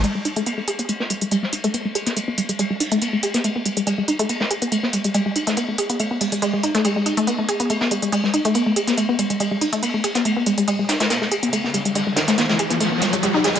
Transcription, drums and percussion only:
0.04 closed hi-hat, ride
0.15 ride
0.25 closed hi-hat, ride
0.36 closed hi-hat
0.46 closed hi-hat, ride
0.58 ride
0.68 closed hi-hat, ride
0.78 closed hi-hat, ride
0.88 closed hi-hat, ride
1.00 snare
1.10 closed hi-hat, ride
1.21 closed hi-hat
1.31 closed hi-hat, ride
1.43 snare
1.53 closed hi-hat, ride
1.64 closed hi-hat
1.74 closed hi-hat, ride
1.95 closed hi-hat, ride
2.06 snare, closed hi-hat
2.17 closed hi-hat, ride
2.37 closed hi-hat, ride
2.49 closed hi-hat, ride
2.59 closed hi-hat, ride
2.70 ride
2.80 closed hi-hat, open hi-hat
2.92 closed hi-hat
3.02 closed hi-hat, ride
3.13 ride
3.23 closed hi-hat, ride
3.34 snare, closed hi-hat
3.44 closed hi-hat, ride
3.56 ride
3.66 closed hi-hat, ride
3.77 closed hi-hat
3.87 closed hi-hat, ride
3.98 ride
4.08 closed hi-hat, ride
4.19 closed hi-hat, ride
4.29 closed hi-hat, ride
4.40 snare
4.50 closed hi-hat, ride
4.62 closed hi-hat
4.72 closed hi-hat, ride
4.83 snare
4.93 closed hi-hat, ride
5.04 closed hi-hat
5.14 closed hi-hat, ride
5.36 closed hi-hat, ride
5.47 snare, closed hi-hat
5.56 closed hi-hat, ride
5.78 closed hi-hat, ride
5.90 closed hi-hat, ride
6.00 closed hi-hat, ride
6.11 ride
6.21 closed hi-hat, open hi-hat
6.32 closed hi-hat
6.42 closed hi-hat, ride
6.53 ride
6.63 closed hi-hat, ride
6.75 snare, closed hi-hat
6.84 closed hi-hat, ride
6.96 ride
7.06 closed hi-hat, ride
7.17 closed hi-hat
7.27 closed hi-hat, ride
7.39 ride
7.48 closed hi-hat, ride
7.60 closed hi-hat, ride
7.70 closed hi-hat, ride
7.81 snare
7.91 closed hi-hat, ride
8.02 closed hi-hat
8.12 closed hi-hat, ride
8.24 snare
8.34 closed hi-hat, ride
8.45 closed hi-hat
8.54 closed hi-hat, ride
8.76 closed hi-hat, ride
8.88 snare, closed hi-hat
8.97 closed hi-hat, ride
9.19 closed hi-hat, ride
9.30 closed hi-hat, ride
9.40 closed hi-hat, ride
9.51 ride
9.61 closed hi-hat, open hi-hat
9.73 closed hi-hat
9.83 closed hi-hat, ride
9.94 ride
10.04 closed hi-hat, ride
10.15 snare, closed hi-hat
10.25 closed hi-hat, ride
10.37 ride
10.46 closed hi-hat, ride
10.58 closed hi-hat
10.68 closed hi-hat, ride
10.79 ride
10.89 snare, closed hi-hat, ride
11.00 snare, closed hi-hat, ride
11.10 snare, closed hi-hat, ride
11.22 snare
11.32 closed hi-hat, ride
11.43 closed hi-hat
11.53 closed hi-hat, ride
11.65 snare
11.74 closed hi-hat, ride
11.85 closed hi-hat
11.95 closed hi-hat, ride
12.16 snare, closed hi-hat, ride
12.27 snare, closed hi-hat, ride
12.38 snare, closed hi-hat, ride
12.49 snare, ride
12.59 closed hi-hat, ride
12.70 closed hi-hat, ride
12.80 closed hi-hat, ride
12.92 ride
13.02 snare, closed hi-hat, ride
13.13 closed hi-hat
13.23 closed hi-hat, ride
13.44 snare, closed hi-hat, ride
13.56 closed hi-hat, ride

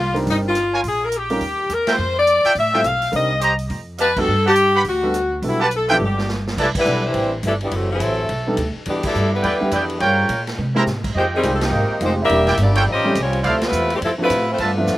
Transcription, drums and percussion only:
0.16 open hi-hat
0.27 kick, open hi-hat
0.55 cross-stick, closed hi-hat
0.84 kick, open hi-hat
1.12 closed hi-hat
1.30 open hi-hat
1.41 kick, open hi-hat
1.70 cross-stick, closed hi-hat
1.87 snare, ride
2.27 closed hi-hat
2.45 open hi-hat
2.55 kick, open hi-hat
2.73 snare
2.84 cross-stick, closed hi-hat
3.02 open hi-hat
3.13 kick, open hi-hat
3.41 closed hi-hat
3.59 open hi-hat
3.70 kick, open hi-hat
3.98 cross-stick, closed hi-hat
4.17 kick, crash
4.56 closed hi-hat
4.84 kick, open hi-hat
5.14 cross-stick, closed hi-hat
5.42 kick, open hi-hat
5.71 closed hi-hat
5.89 open hi-hat
6.00 high tom
6.18 snare
6.29 snare
6.47 snare
6.58 kick, crash
6.75 kick, crash
6.85 hi-hat pedal
7.14 kick, ride
7.43 kick, hi-hat pedal, ride
7.61 ride
7.71 kick, ride
8.00 kick, hi-hat pedal, ride
8.29 kick, ride
8.57 kick, hi-hat pedal, ride
8.86 kick, ride
9.03 kick, crash
9.15 hi-hat pedal
9.43 kick, ride
9.71 kick, hi-hat pedal, ride
9.90 ride
10.00 kick, ride
10.29 kick, hi-hat pedal, ride
10.47 snare, ride
10.58 high tom
10.76 high tom
10.87 snare, hi-hat pedal
11.04 kick, crash
11.15 kick
11.43 kick, hi-hat pedal, ride
11.61 snare, ride
12.01 kick, hi-hat pedal, ride
12.29 kick, ride
12.47 snare, ride
12.57 kick, hi-hat pedal, ride
12.75 ride
12.87 kick
13.15 kick, hi-hat pedal, ride
13.33 ride
13.44 kick, ride
13.62 snare, ride
13.72 hi-hat pedal
13.90 ride
14.02 kick, ride
14.30 kick, hi-hat pedal, ride
14.58 kick, ride
14.87 snare, hi-hat pedal

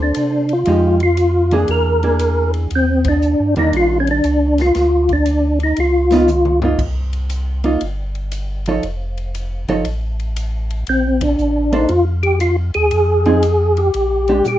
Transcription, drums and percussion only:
0.14 hi-hat pedal, ride
0.49 ride
0.65 ride
1.00 ride
1.17 hi-hat pedal, ride
1.51 ride
1.68 ride
2.03 ride
2.19 hi-hat pedal, ride
2.54 ride
2.70 ride
3.04 kick, ride
3.22 hi-hat pedal
3.56 ride
3.73 ride
4.07 ride
4.24 hi-hat pedal, ride
4.58 snare, ride
4.75 snare, ride
5.09 kick, ride
5.26 hi-hat pedal, ride
5.60 ride
5.76 ride
6.11 snare, ride
6.28 hi-hat pedal, mid tom
6.45 mid tom
6.62 floor tom
6.79 kick, crash
7.13 ride
7.30 hi-hat pedal, ride
7.64 ride
7.81 ride
8.15 ride
8.32 hi-hat pedal, ride
8.66 ride
8.83 ride
9.17 ride
9.35 hi-hat pedal, ride
9.68 ride
9.85 ride
10.20 ride
10.36 hi-hat pedal, ride
10.70 ride
10.87 ride
11.21 kick, ride
11.38 hi-hat pedal
11.72 ride
11.89 ride
12.23 ride
12.40 hi-hat pedal, ride
12.74 ride
12.91 ride
13.25 ride
13.43 hi-hat pedal, ride
13.77 ride
13.94 ride
14.28 ride
14.44 hi-hat pedal, high tom

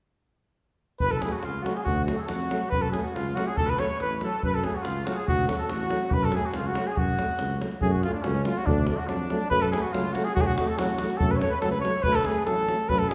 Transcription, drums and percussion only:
1.00 davul low
1.22 davul high
1.43 davul high
1.66 davul high
1.77 davul high
1.86 davul low
2.08 davul high
2.28 davul high
2.51 davul high
2.61 davul high
2.72 davul low
2.94 davul high
3.16 davul high
3.37 davul high
3.48 davul high
3.57 davul low
3.69 davul high
3.78 davul high
3.90 davul high
4.00 davul high
4.12 davul high
4.21 davul high
4.33 davul high
4.43 davul low
4.64 davul high
4.85 davul high
5.07 davul high
5.17 davul high
5.28 davul low
5.49 davul high
5.69 davul high
5.90 davul high
6.03 davul high
6.11 davul low
6.32 davul high
6.54 davul high
6.75 davul high
6.87 davul high
6.97 davul low
7.19 davul high
7.39 davul high
7.50 davul high
7.61 davul high
7.71 davul high
7.81 davul low
8.03 davul high
8.24 davul high
8.45 davul high
8.57 davul high
8.67 davul low
8.87 davul high
9.09 davul high
9.30 davul high
9.41 davul high
9.51 davul low
9.73 davul high
9.94 davul high
10.15 davul high
10.27 davul high
10.37 davul low
10.58 davul high
10.79 davul high
10.99 davul high
11.10 davul high
11.21 davul low
11.41 davul high
11.62 davul high
11.85 davul high
11.95 davul high
12.04 davul low
12.24 davul high
12.47 davul high
12.69 davul high
12.79 davul high
12.89 davul low
13.11 davul high

